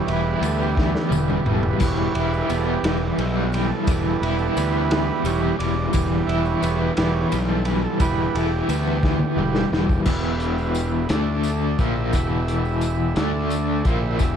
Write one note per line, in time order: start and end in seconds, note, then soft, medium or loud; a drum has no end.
0.00 0.75 E3 medium
0.00 1.79 E3 medium
0.00 1.10 G3 medium
0.00 1.79 G3 medium
0.00 0.41 B3 medium
0.00 1.79 B3 medium
0.00 0.11 C#5 loud
0.07 0.34 E1 medium
0.07 2.14 E4 medium
0.07 ride medium
0.13 0.46 B4 medium
0.41 0.95 D2 medium
0.41 2.50 B3 medium
0.41 ride medium
0.41 tambourine medium
0.46 0.62 A4 medium
0.61 0.77 G4 medium
0.61 tambourine soft
0.76 1.45 E3 medium
0.76 kick medium
0.76 snare medium
0.95 snare medium
1.10 1.38 E1 medium
1.10 3.20 G3 medium
1.10 high tom medium
1.10 tambourine loud
1.30 mid tom medium
1.45 1.72 E1 medium
1.45 1.79 E3 medium
1.45 mid tom medium
1.52 1.67 A4 medium
1.63 floor tom medium
1.70 1.84 B4 medium
1.80 2.07 E1 medium
1.80 2.84 E3 medium
1.80 2.87 G3 soft
1.80 kick loud
1.80 crash medium
1.80 tambourine medium
1.84 2.86 E3 medium
1.84 2.88 B3 medium
1.84 2.16 C#5 medium
2.14 2.41 E1 medium
2.14 4.22 E4 medium
2.14 ride medium
2.20 2.50 B4 medium
2.34 tambourine soft
2.50 2.76 E1 medium
2.50 4.56 B3 medium
2.50 ride medium
2.50 tambourine medium
2.57 2.71 A4 medium
2.73 3.02 G4 medium
2.83 3.10 E1 medium
2.83 3.54 E3 medium
2.83 snare loud
2.83 ride loud
2.83 tambourine soft
2.88 3.17 E3 soft
2.88 3.17 G3 soft
2.88 3.18 B3 medium
3.18 3.71 B1 medium
3.18 5.24 G3 medium
3.18 ride medium
3.22 3.38 E4 medium
3.37 3.54 F#4 medium
3.52 3.89 E3 medium
3.52 3.71 G4 medium
3.52 ride medium
3.52 tambourine soft
3.69 4.23 A4 loud
3.84 4.14 E1 medium
3.84 5.23 E3 medium
3.84 5.24 G3 soft
3.84 5.24 B3 medium
3.84 kick loud
3.84 ride loud
3.84 tambourine medium
3.89 4.90 E3 medium
4.20 4.48 E1 medium
4.20 6.26 E4 medium
4.20 4.28 B4 medium
4.20 ride medium
4.39 4.48 A4 loud
4.39 tambourine soft
4.57 5.10 D2 medium
4.57 6.62 B3 medium
4.57 5.27 B4 loud
4.57 ride medium
4.57 tambourine loud
4.91 5.59 E3 medium
4.91 snare loud
4.91 ride loud
4.91 tambourine soft
5.24 5.51 E1 loud
5.24 5.55 E3 medium
5.24 7.31 G3 medium
5.24 5.56 G3 soft
5.24 5.56 B3 medium
5.24 5.41 C#5 loud
5.24 ride medium
5.24 tambourine loud
5.59 5.86 E1 medium
5.59 5.93 E3 medium
5.59 6.30 D5 loud
5.59 ride medium
5.59 tambourine soft
5.93 6.21 E1 medium
5.93 6.98 E3 medium
5.93 6.93 E3 medium
5.93 6.93 G3 medium
5.93 6.94 B3 medium
5.93 kick loud
5.93 ride medium
5.93 tambourine loud
6.27 6.54 E1 medium
6.27 8.35 E4 medium
6.27 6.45 E5 loud
6.27 ride medium
6.45 6.63 C#5 loud
6.45 tambourine soft
6.62 6.89 E1 medium
6.62 8.34 B3 medium
6.62 6.79 C#5 medium
6.62 ride medium
6.62 tambourine loud
6.97 7.24 E1 loud
6.97 7.28 E3 soft
6.97 7.65 E3 medium
6.97 7.28 G3 soft
6.97 7.28 B3 medium
6.97 7.15 D5 medium
6.97 snare loud
6.97 ride loud
6.97 tambourine soft
7.14 7.32 C#5 medium
7.31 7.85 B1 loud
7.31 9.04 G3 medium
7.31 7.39 B4 loud
7.31 ride medium
7.31 tambourine loud
7.50 7.67 A4 medium
7.65 8.00 E3 medium
7.65 7.82 B4 medium
7.65 ride medium
7.65 tambourine soft
7.84 8.01 A4 loud
8.00 8.27 E1 medium
8.00 8.46 E3 medium
8.00 9.03 E3 medium
8.00 8.46 G3 soft
8.00 8.47 B3 medium
8.00 8.36 B4 loud
8.00 kick loud
8.00 ride medium
8.00 tambourine medium
8.34 8.61 E1 loud
8.34 10.07 E4 medium
8.34 8.52 A4 medium
8.34 ride medium
8.34 tambourine soft
8.49 10.01 G4 medium
8.69 9.22 D2 loud
8.69 10.07 B3 medium
8.69 ride medium
8.69 tambourine loud
9.03 9.72 E3 medium
9.03 kick medium
9.03 snare medium
9.19 high tom medium
9.35 9.64 E1 loud
9.35 9.67 E3 medium
9.35 9.68 G3 soft
9.35 10.07 G3 medium
9.35 9.68 B3 medium
9.55 snare medium
9.72 9.98 E1 medium
9.72 10.07 E3 medium
9.72 snare medium
9.89 kick loud
9.89 tambourine soft
10.05 11.06 E1 medium
10.05 11.09 E2 medium
10.05 11.09 B2 medium
10.05 11.09 E3 loud
10.05 11.09 B3 medium
10.05 11.08 E4 medium
10.05 11.09 G4 medium
10.05 11.09 B4 medium
10.05 kick loud
10.05 crash loud
10.05 tambourine medium
10.40 closed hi-hat medium
10.58 tambourine soft
10.75 closed hi-hat medium
10.75 tambourine medium
11.09 11.75 D2 loud
11.09 11.77 D3 medium
11.09 11.78 A3 loud
11.09 11.79 A3 medium
11.09 11.78 D4 medium
11.09 11.79 D4 medium
11.09 11.79 A4 medium
11.09 11.79 D5 medium
11.09 snare loud
11.09 closed hi-hat medium
11.09 tambourine soft
11.43 closed hi-hat medium
11.43 tambourine medium
11.78 12.11 A#1 medium
11.78 12.13 A#2 medium
11.78 12.13 F3 loud
11.78 12.13 A#3 medium
11.78 13.16 E4 medium
11.78 13.16 G4 medium
11.78 13.16 E5 medium
11.78 13.16 B5 medium
11.78 kick loud
11.78 closed hi-hat medium
11.78 tambourine soft
12.13 13.13 E1 medium
12.13 13.15 E2 medium
12.13 13.15 B2 medium
12.13 13.16 E3 medium
12.13 kick loud
12.13 closed hi-hat medium
12.13 tambourine medium
12.48 closed hi-hat medium
12.65 tambourine soft
12.81 closed hi-hat medium
12.81 tambourine medium
13.15 13.81 D2 loud
13.15 13.84 D3 medium
13.15 13.84 A3 loud
13.15 13.86 A3 medium
13.15 13.85 D4 medium
13.15 13.86 D4 medium
13.15 13.86 A4 medium
13.15 13.86 D5 medium
13.15 snare loud
13.15 closed hi-hat medium
13.15 tambourine soft
13.50 closed hi-hat medium
13.50 tambourine loud
13.84 14.18 A#1 medium
13.84 14.18 A#2 medium
13.84 14.18 F3 medium
13.84 14.19 A#3 loud
13.84 14.37 E4 medium
13.84 14.37 G4 medium
13.84 14.37 E5 medium
13.84 14.37 B5 medium
13.84 kick loud
13.84 closed hi-hat medium
13.84 tambourine soft
14.19 14.37 E1 medium
14.19 14.37 E2 loud
14.19 14.37 B2 loud
14.19 14.37 E3 loud
14.19 kick loud
14.19 closed hi-hat medium
14.19 tambourine medium